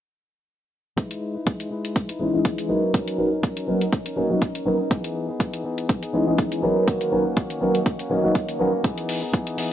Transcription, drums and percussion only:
0.98 kick loud
0.98 closed hi-hat medium
1.11 closed hi-hat soft
1.47 kick loud
1.47 closed hi-hat medium
1.60 closed hi-hat soft
1.85 closed hi-hat soft
1.96 kick loud
1.96 closed hi-hat medium
2.09 closed hi-hat soft
2.45 kick loud
2.45 closed hi-hat medium
2.58 closed hi-hat medium
2.94 kick loud
2.94 closed hi-hat medium
3.08 closed hi-hat soft
3.43 kick loud
3.43 closed hi-hat medium
3.57 closed hi-hat soft
3.81 closed hi-hat soft
3.93 kick loud
3.93 closed hi-hat medium
4.06 closed hi-hat soft
4.42 kick loud
4.42 closed hi-hat medium
4.55 closed hi-hat soft
4.91 kick loud
4.91 closed hi-hat medium
5.04 closed hi-hat soft
5.40 kick loud
5.40 closed hi-hat medium
5.54 closed hi-hat soft
5.78 closed hi-hat soft
5.89 kick loud
5.89 closed hi-hat medium
6.03 closed hi-hat soft
6.38 kick loud
6.38 closed hi-hat medium
6.52 closed hi-hat soft
6.88 kick loud
6.88 closed hi-hat medium
7.01 closed hi-hat soft
7.37 kick loud
7.37 closed hi-hat medium
7.50 closed hi-hat soft
7.75 closed hi-hat soft
7.86 kick loud
7.86 closed hi-hat medium
7.99 closed hi-hat soft
8.35 kick loud
8.35 closed hi-hat medium
8.49 closed hi-hat soft
8.84 kick loud
8.84 closed hi-hat medium
8.98 closed hi-hat soft
9.09 open hi-hat loud
9.34 kick loud
9.34 closed hi-hat medium
9.47 closed hi-hat soft
9.58 open hi-hat medium

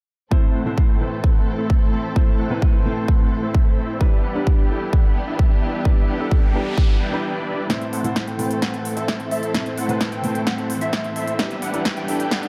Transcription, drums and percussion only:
0.31 kick loud
0.78 kick loud
1.24 kick loud
1.70 kick loud
2.16 kick loud
2.62 kick loud
3.08 kick loud
3.55 kick loud
4.01 kick loud
4.47 kick loud
4.93 kick loud
5.39 kick loud
5.85 kick loud
6.31 kick loud
6.78 kick loud
7.70 kick loud
7.70 snare soft
7.70 closed hi-hat medium
7.81 closed hi-hat soft
7.93 open hi-hat medium
8.04 closed hi-hat medium
8.16 kick loud
8.16 snare soft
8.16 closed hi-hat medium
8.28 closed hi-hat soft
8.39 open hi-hat loud
8.51 closed hi-hat medium
8.62 kick loud
8.62 snare soft
8.62 closed hi-hat medium
8.74 closed hi-hat soft
8.85 open hi-hat loud
8.97 closed hi-hat medium
9.08 kick loud
9.08 snare soft
9.08 closed hi-hat soft
9.20 closed hi-hat soft
9.31 open hi-hat medium
9.43 closed hi-hat soft
9.54 kick loud
9.54 snare medium
9.54 closed hi-hat medium
9.66 closed hi-hat soft
9.78 open hi-hat loud
9.89 closed hi-hat medium
10.01 kick loud
10.01 snare medium
10.01 closed hi-hat medium
10.12 closed hi-hat soft
10.24 open hi-hat medium
10.35 closed hi-hat medium
10.47 kick loud
10.47 snare medium
10.47 closed hi-hat medium
10.58 closed hi-hat soft
10.70 open hi-hat loud
10.81 closed hi-hat medium
10.93 kick loud
10.93 snare medium
10.93 closed hi-hat soft
11.04 closed hi-hat soft
11.16 open hi-hat medium
11.28 closed hi-hat soft
11.39 kick loud
11.39 snare medium
11.39 closed hi-hat soft
11.51 closed hi-hat soft
11.62 open hi-hat loud
11.74 closed hi-hat medium
11.85 kick loud
11.85 snare medium
11.85 closed hi-hat soft
11.97 closed hi-hat soft
12.08 open hi-hat medium
12.20 closed hi-hat medium
12.31 kick loud
12.31 snare medium
12.31 closed hi-hat soft
12.43 closed hi-hat soft

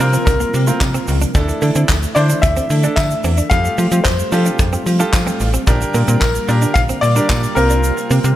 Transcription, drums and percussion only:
0.00 open hi-hat medium
0.00 shaker medium
0.13 closed hi-hat medium
0.13 shaker medium
0.27 kick loud
0.27 closed hi-hat medium
0.27 shaker medium
0.40 closed hi-hat medium
0.40 shaker medium
0.54 open hi-hat medium
0.54 shaker medium
0.67 closed hi-hat medium
0.67 shaker medium
0.81 kick loud
0.81 snare medium
0.81 clap loud
0.81 tambourine medium
0.81 shaker medium
0.95 closed hi-hat medium
0.95 shaker medium
1.08 open hi-hat medium
1.08 shaker medium
1.21 closed hi-hat soft
1.21 shaker medium
1.35 kick loud
1.35 closed hi-hat medium
1.35 shaker medium
1.49 closed hi-hat medium
1.49 shaker medium
1.62 open hi-hat medium
1.62 shaker medium
1.75 closed hi-hat soft
1.75 shaker medium
1.89 kick loud
1.89 snare medium
1.89 clap loud
1.89 tambourine medium
1.89 shaker medium
2.03 closed hi-hat medium
2.03 shaker medium
2.16 open hi-hat medium
2.16 shaker soft
2.30 closed hi-hat medium
2.30 shaker medium
2.43 kick loud
2.43 closed hi-hat medium
2.43 shaker medium
2.57 closed hi-hat medium
2.57 shaker medium
2.70 open hi-hat medium
2.70 shaker medium
2.84 closed hi-hat medium
2.84 shaker medium
2.97 kick loud
2.97 snare loud
2.97 clap loud
2.97 tambourine medium
2.97 shaker medium
3.11 closed hi-hat medium
3.11 shaker medium
3.24 open hi-hat medium
3.24 shaker medium
3.38 closed hi-hat soft
3.38 shaker medium
3.51 kick loud
3.51 closed hi-hat medium
3.51 shaker medium
3.65 closed hi-hat medium
3.65 shaker medium
3.78 open hi-hat medium
3.78 shaker soft
3.92 closed hi-hat soft
3.92 shaker medium
4.05 kick loud
4.05 snare medium
4.05 clap loud
4.05 closed hi-hat medium
4.05 tambourine medium
4.05 shaker medium
4.19 closed hi-hat medium
4.19 shaker medium
4.32 open hi-hat medium
4.32 shaker soft
4.46 closed hi-hat medium
4.46 shaker medium
4.59 kick loud
4.59 closed hi-hat medium
4.59 shaker medium
4.73 closed hi-hat medium
4.73 shaker medium
4.86 open hi-hat medium
4.86 shaker medium
5.00 closed hi-hat medium
5.00 shaker medium
5.13 kick loud
5.13 snare loud
5.13 clap loud
5.13 tambourine medium
5.13 shaker medium
5.27 closed hi-hat medium
5.27 shaker medium
5.40 open hi-hat medium
5.40 shaker medium
5.54 closed hi-hat soft
5.54 shaker medium
5.67 kick loud
5.67 closed hi-hat medium
5.67 shaker medium
5.81 closed hi-hat medium
5.81 shaker medium
5.94 open hi-hat medium
5.94 shaker medium
6.08 closed hi-hat soft
6.08 shaker medium
6.21 kick loud
6.21 snare medium
6.21 clap loud
6.21 closed hi-hat medium
6.21 tambourine medium
6.21 shaker medium
6.35 closed hi-hat medium
6.35 shaker medium
6.48 open hi-hat medium
6.48 shaker medium
6.62 closed hi-hat medium
6.62 shaker medium
6.76 kick loud
6.76 closed hi-hat medium
6.76 shaker medium
6.89 closed hi-hat medium
6.89 shaker medium
7.03 open hi-hat medium
7.03 shaker medium
7.16 closed hi-hat medium
7.16 shaker medium
7.30 kick loud
7.30 snare medium
7.30 clap loud
7.30 tambourine medium
7.30 shaker medium
7.43 closed hi-hat medium
7.43 shaker medium
7.56 open hi-hat medium
7.56 shaker medium
7.70 closed hi-hat soft
7.70 shaker medium
7.84 closed hi-hat medium
7.84 shaker medium
7.98 closed hi-hat medium
7.98 shaker medium
8.11 open hi-hat medium
8.11 shaker medium
8.24 closed hi-hat medium
8.24 shaker medium

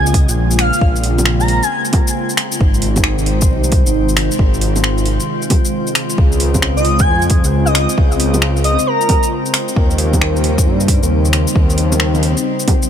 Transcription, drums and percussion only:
0.06 shaker soft
0.14 kick loud
0.14 open hi-hat medium
0.29 shaker medium
0.51 shaker soft
0.59 finger snap loud
0.59 open hi-hat medium
0.73 shaker medium
0.81 kick loud
0.96 shaker soft
1.04 open hi-hat medium
1.18 low bongo medium
1.18 shaker medium
1.26 finger snap loud
1.40 shaker soft
1.48 open hi-hat medium
1.63 shaker medium
1.85 shaker soft
1.93 kick loud
1.93 open hi-hat medium
1.93 low bongo medium
2.07 shaker medium
2.29 shaker soft
2.37 finger snap loud
2.37 open hi-hat medium
2.52 shaker medium
2.61 kick loud
2.74 shaker soft
2.82 open hi-hat medium
2.96 kick medium
2.96 low bongo medium
2.96 shaker medium
3.04 finger snap loud
3.19 shaker soft
3.26 open hi-hat medium
3.41 kick loud
3.41 shaker medium
3.64 shaker soft
3.72 kick loud
3.72 open hi-hat medium
3.86 shaker medium
4.09 shaker soft
4.17 finger snap loud
4.17 open hi-hat medium
4.31 shaker medium
4.39 kick loud
4.54 shaker soft
4.61 open hi-hat medium
4.76 low bongo soft
4.76 shaker medium
4.84 finger snap loud
4.98 shaker soft
5.06 open hi-hat medium
5.20 shaker medium
5.42 shaker soft
5.50 kick loud
5.50 open hi-hat medium
5.50 low bongo medium
5.65 shaker medium
5.87 shaker soft
5.95 finger snap loud
5.95 open hi-hat medium
6.10 shaker medium
6.18 kick loud
6.32 shaker soft
6.40 open hi-hat medium
6.54 kick medium
6.54 low bongo soft
6.54 shaker medium
6.62 finger snap loud
6.77 shaker soft
6.85 open hi-hat medium
6.99 kick loud
6.99 shaker medium
7.22 shaker soft
7.30 kick loud
7.30 open hi-hat medium
7.44 shaker medium
7.67 shaker soft
7.75 finger snap loud
7.75 open hi-hat medium
7.89 shaker medium
7.98 kick loud
8.12 shaker soft
8.20 open hi-hat medium
8.34 low bongo medium
8.34 shaker medium
8.42 finger snap loud
8.57 shaker soft
8.64 open hi-hat medium
8.79 shaker medium
9.01 shaker soft
9.09 kick loud
9.09 open hi-hat medium
9.09 low bongo medium
9.23 shaker medium
9.46 shaker soft
9.54 finger snap loud
9.54 open hi-hat medium
9.68 shaker medium
9.76 kick loud
9.91 shaker soft
9.98 open hi-hat medium
10.13 kick medium
10.13 low bongo medium
10.13 shaker medium
10.22 finger snap loud
10.36 shaker soft
10.44 open hi-hat medium
10.58 kick loud
10.58 shaker medium
10.80 shaker soft
10.88 kick loud
10.88 open hi-hat medium
11.03 shaker medium
11.25 shaker soft
11.33 finger snap loud
11.33 open hi-hat medium
11.47 shaker medium
11.56 kick loud
11.70 shaker soft
11.78 open hi-hat medium
11.92 low bongo medium
11.92 shaker medium
12.00 finger snap loud
12.15 low bongo soft
12.15 shaker soft
12.23 open hi-hat medium
12.37 shaker medium
12.60 shaker soft
12.68 kick loud
12.68 open hi-hat medium
12.68 low bongo medium
12.82 shaker medium

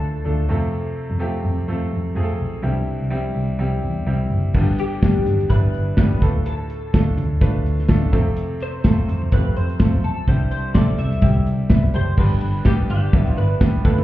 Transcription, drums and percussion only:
4.54 kick medium
4.54 crash medium
4.78 closed hi-hat medium
5.02 kick medium
5.02 snare loud
5.02 closed hi-hat medium
5.26 closed hi-hat medium
5.26 floor tom medium
5.40 closed hi-hat soft
5.50 kick medium
5.50 closed hi-hat medium
5.74 closed hi-hat soft
5.97 kick loud
5.97 snare loud
5.97 closed hi-hat medium
6.11 floor tom medium
6.22 kick medium
6.22 closed hi-hat medium
6.46 closed hi-hat medium
6.70 closed hi-hat medium
6.94 kick medium
6.94 snare loud
6.94 closed hi-hat medium
7.18 closed hi-hat medium
7.18 floor tom medium
7.41 kick medium
7.41 closed hi-hat medium
7.66 closed hi-hat soft
7.79 snare soft
7.88 kick loud
7.88 snare loud
7.88 closed hi-hat medium
8.02 floor tom medium
8.13 kick loud
8.13 closed hi-hat medium
8.37 closed hi-hat medium
8.60 closed hi-hat medium
8.84 kick medium
8.84 snare loud
8.84 closed hi-hat medium
9.09 closed hi-hat medium
9.09 floor tom medium
9.22 floor tom medium
9.32 kick loud
9.32 closed hi-hat medium
9.56 closed hi-hat medium
9.70 closed hi-hat soft
9.79 kick loud
9.79 snare medium
9.79 closed hi-hat medium
9.93 floor tom medium
10.04 closed hi-hat medium
10.28 kick medium
10.28 closed hi-hat medium
10.52 closed hi-hat medium
10.74 kick loud
10.74 snare loud
10.74 closed hi-hat medium
10.98 closed hi-hat medium
10.98 floor tom medium
11.13 closed hi-hat medium
11.22 kick loud
11.22 closed hi-hat medium
11.47 closed hi-hat medium
11.70 kick loud
11.70 snare loud
11.70 closed hi-hat medium
11.83 floor tom medium
11.94 closed hi-hat medium
12.17 kick loud
12.17 crash medium
12.41 ride medium
12.65 kick loud
12.65 snare loud
12.65 ride medium
12.90 ride medium
13.13 kick loud
13.13 ride medium
13.27 ride soft
13.38 ride soft
13.61 kick loud
13.61 snare loud
13.61 ride medium
13.85 kick loud
13.85 ride medium
13.98 floor tom medium

